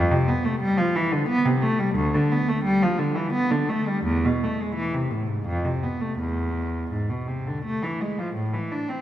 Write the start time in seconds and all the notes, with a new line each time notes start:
0.11 C3
0.28 B3
0.45 A3
0.60 G3
0.77 F3
0.96 E3
1.12 D3
1.29 B3
1.45 C3
1.62 A3
1.79 G3
1.95 D2
2.14 D3
2.31 B3
2.49 A3
2.64 G3
2.82 F3
2.98 D3
3.15 E3
3.33 B3
3.51 D3
3.69 A3
3.87 G3
4.04 E2
4.25 B2
4.43 A3
4.61 G#3
4.75 E3
4.93 C3
5.11 A2
5.29 G#2
5.46 F2
5.65 C3
5.83 B3
6.01 A3
6.19 E2
6.92 G#2
7.10 B2
7.27 C3
7.47 D3
7.65 A3
7.83 E3
8.01 G#3
8.18 F3
8.35 A2
8.54 E3
8.71 D4
8.89 C4